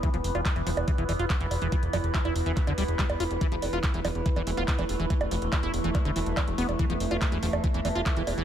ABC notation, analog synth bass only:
X:1
M:4/4
L:1/16
Q:1/4=142
K:C
V:1 name="Analog synth bass" clef=bass
z E,,, F,,, E,,, z E,,, E,,, E,,, z E,,, E,,, E,,, z E,,, E,,, E,,, | z E,,, F,,, E,,, z E,,, E,,, E,,, z E,,, D,,, E,,, z E,,, E,,, E,,, | z E,,, F,,, E,,, z E,,, E,,, E,,, z E,,, E,,, E,,, z E,,, E,,, E,,, | z E,,, F,,, E,,, z E,,, E,,, E,,, z E,,, E,,, E,,, z E,,, E,,, E,,, |
z E,,, F,,, E,,, z E,,, E,,, E,,, z E,,, E,,, E,,, z E,,, E,,, E,,, |]